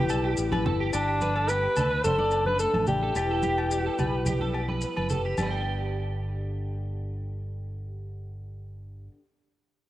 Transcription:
Already playing: steel-string acoustic guitar E2 E3 B3, alto saxophone G4
0.09 fingered electric bass B1, steel-string acoustic guitar G3, clean electric guitar A4, low agogo, maracas
0.24 clean electric guitar G4
0.37 fingered electric bass A1, steel-string acoustic guitar B3, maracas
0.52 clean electric guitar B4, high conga, low agogo
0.66 fingered electric bass G1, clean electric guitar A4, low conga
0.80 clean electric guitar G4
0.92 fingered electric bass G1, steel-string acoustic guitar G2 G4, alto saxophone D4, clean electric guitar G4, low agogo, maracas
1.20 steel-string acoustic guitar D3, clean electric guitar B4, high conga, maracas
1.35 clean electric guitar A4, low agogo
1.48 steel-string acoustic guitar B3, clean electric guitar G4, alto saxophone B4, maracas
1.76 fingered electric bass D2, steel-string acoustic guitar D4, clean electric guitar A4, low conga, low agogo, maracas
1.90 clean electric guitar B4
2.04 fingered electric bass F#1, steel-string acoustic guitar F#2 D4, alto saxophone A4, clean electric guitar C5, high conga, low conga, maracas
2.18 clean electric guitar D5, high conga
2.31 steel-string acoustic guitar D3, low agogo, maracas
2.46 alto saxophone B4, clean electric guitar B4, high conga
2.59 steel-string acoustic guitar A3, alto saxophone A4, clean electric guitar A4, maracas
2.74 fingered electric bass A1, high conga, low agogo
2.87 steel-string acoustic guitar D4, alto saxophone G4, low conga, maracas
3.03 clean electric guitar A4
3.14 fingered electric bass E1, steel-string acoustic guitar E2 E3 G3 B3, clean electric guitar G4, low agogo, maracas
3.31 clean electric guitar A4
3.42 steel-string acoustic guitar E3, clean electric guitar G4, high conga, maracas
3.58 low agogo
3.71 steel-string acoustic guitar G3, clean electric guitar G4, maracas
3.86 clean electric guitar A4
3.99 fingered electric bass B1, steel-string acoustic guitar B3, clean electric guitar B4, low conga, low agogo, maracas
4.26 steel-string acoustic guitar G3, clean electric guitar G4, high conga, low conga, maracas
4.41 clean electric guitar A4, high conga
4.54 steel-string acoustic guitar B3, clean electric guitar G4, low agogo
4.69 clean electric guitar B4, high conga
4.81 steel-string acoustic guitar B3, maracas
4.97 fingered electric bass F#1, clean electric guitar B4, high conga, low agogo
5.10 steel-string acoustic guitar G4, clean electric guitar A4, low conga, maracas
5.25 clean electric guitar G4
5.38 fingered electric bass G1, steel-string acoustic guitar G2, clean electric guitar G4, high conga, low agogo, maracas
5.43 steel-string acoustic guitar D3, clean electric guitar B4 D5
5.48 steel-string acoustic guitar B3, clean electric guitar G5
5.54 steel-string acoustic guitar D4
5.58 steel-string acoustic guitar G4

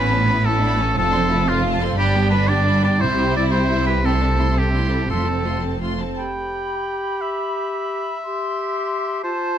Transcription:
Already playing: double bass section A1, cello section A2, viola section B3 E4, violin section C#4 B5, oboe B4
0.11 violin section B3 A5, viola section B3 C#4
0.29 viola section B3 E4, violin section C#4 B5
0.45 viola section B3 C#4, violin section E4 A5, oboe A4
0.61 viola section B3 E4, violin section D4 B5
0.79 viola section B3 C#4, violin section C#4 A5
0.96 double bass section F1, cello section F2, viola section A3 F4, violin section C4 A5, oboe A4
1.12 viola section C4 A4, violin section D4 C6
1.29 viola section A3 F4, violin section E4 A5
1.47 viola section C4 A4, violin section F4 C6, oboe F4
1.65 viola section A3 F4, violin section A5
1.81 viola section C4 A4, violin section C6
1.97 double bass section G1, cello section G2, viola section G3 D4, violin section D4 B5, oboe G4
2.15 viola section B3 G4, violin section G5
2.31 viola section G3 D4, oboe B4, violin section B5
2.48 viola section B3 G4, oboe D5, violin section G5
2.66 viola section G3 D4, violin section B5
2.84 viola section B3 G4, oboe D5, violin section G5
3.00 double bass section C2, cello section C3, viola section G3 E4, violin section E4 E5, oboe C5
3.17 viola section C4 G4, violin section G5
3.34 viola section G3 E4, oboe D5, violin section E5
3.51 viola section C4 G4, oboe C5, violin section G5
3.69 viola section G3 E4, violin section E5
3.85 viola section C4 G4, oboe B4, violin section G5
4.02 viola section A3 E4, violin section C4 C6, oboe A4
4.19 viola section C4 A4, violin section D4 A5
4.37 viola section A3 E4, violin section E4 C6
4.54 viola section C4 A4, violin section C4 A5, oboe G4
4.72 viola section A3 E4, violin section D4 C6
4.90 viola section C4 A4, violin section E4 A5
5.08 double bass section F1, cello section F2, viola section A3 F4, violin section C4 C6, oboe A4
5.27 viola section C4 A4, violin section A5
5.45 viola section A3 F4, violin section C6
5.61 viola section C4 A4, violin section A5
5.81 viola section A3 F4, violin section C6
5.99 viola section C4 A4, violin section A5
6.16 clarinet G4, oboe G5, flute section B5
7.21 oboe E5
8.23 clarinet G4, flute section C6
9.23 clarinet F4, oboe C5, flute section A5

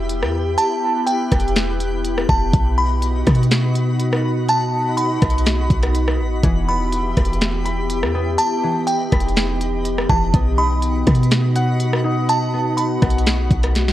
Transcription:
Already playing: 808-style bass E1, harp B3, ambient pad B3 E4 G4, synth texture G4 E5 B5
0.09 closed hi-hat
0.22 808-style bass E2, cross-stick
0.58 synth bell A5, synth texture F#6, closed hi-hat
1.06 synth bell G5, closed hi-hat
1.32 808-style bass E1, kick, cross-stick, closed hi-hat
1.40 closed hi-hat
1.48 closed hi-hat
1.56 snare, closed hi-hat
1.80 closed hi-hat
2.04 closed hi-hat
2.18 cross-stick
2.29 808-style bass E1, synth bell A5, kick
2.53 808-style bass B1, ambient pad D#4 F#4, synth texture F#4 D#5, kick, closed hi-hat
2.78 synth bell B5
3.02 closed hi-hat
3.27 808-style bass B2, kick, cross-stick, closed hi-hat
3.35 closed hi-hat
3.43 closed hi-hat
3.51 snare, closed hi-hat
3.75 closed hi-hat
4.00 closed hi-hat
4.13 cross-stick
4.48 synth bell A5, closed hi-hat
4.97 synth bell B5, closed hi-hat
5.22 808-style bass B1, kick, cross-stick, closed hi-hat
5.30 closed hi-hat
5.38 closed hi-hat
5.46 snare, closed hi-hat
5.70 808-style bass B1, kick, closed hi-hat
5.83 cross-stick, closed hi-hat
5.95 closed hi-hat
6.08 cross-stick
6.19 808-style bass A1
6.44 808-style bass E1, harp E3, ambient pad B3 E4 G4, synth texture G4 E5, kick, closed hi-hat
6.69 harp B3, synth bell B5
6.92 closed hi-hat
7.17 808-style bass E1, kick, cross-stick, closed hi-hat
7.25 closed hi-hat
7.33 closed hi-hat
7.41 snare, closed hi-hat
7.65 harp B5, closed hi-hat
7.90 closed hi-hat
8.02 808-style bass E2, cross-stick
8.14 harp B3
8.38 ambient pad D#4, synth texture D#5, synth bell A5, closed hi-hat
8.63 harp E3
8.87 synth bell G5, closed hi-hat
9.12 808-style bass E1, harp B5, kick, cross-stick, closed hi-hat
9.20 closed hi-hat
9.28 closed hi-hat
9.36 snare, closed hi-hat
9.61 closed hi-hat
9.85 closed hi-hat
9.98 cross-stick
10.09 808-style bass E1, harp E3, synth bell A5, kick
10.34 808-style bass B1, harp B3, ambient pad D#4 F#4, synth texture F#4 B5, kick, closed hi-hat
10.58 harp D#4, synth bell B5
10.82 closed hi-hat
11.07 808-style bass B2, kick, cross-stick, closed hi-hat
11.15 closed hi-hat
11.23 closed hi-hat
11.31 snare, closed hi-hat
11.56 harp F#5, closed hi-hat
11.80 closed hi-hat
11.93 cross-stick
12.04 harp D#4
12.29 synth bell A5, closed hi-hat
12.54 harp B3
12.77 synth bell B5, closed hi-hat
13.02 808-style bass B1, harp F#5, kick, cross-stick, closed hi-hat
13.10 closed hi-hat
13.18 closed hi-hat
13.27 snare, closed hi-hat
13.51 808-style bass B1, kick, closed hi-hat
13.63 cross-stick, closed hi-hat
13.75 snare, closed hi-hat
13.88 snare

